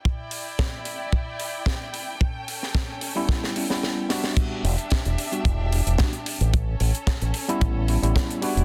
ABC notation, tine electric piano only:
X:1
M:4/4
L:1/16
Q:"Swing 16ths" 1/4=111
K:Em
V:1 name="Tine electric piano"
z16 | z6 z [G,B,^CE]3 [G,B,CE] [G,B,CE]3 [G,B,DF]2- | [G,B,DF]2 z4 z [G,B,DF] z4 [G,B,DF] z3 | z6 z [G,B,^CE]3 [G,B,CE] [G,B,CE]3 [G,B,DF]2 |]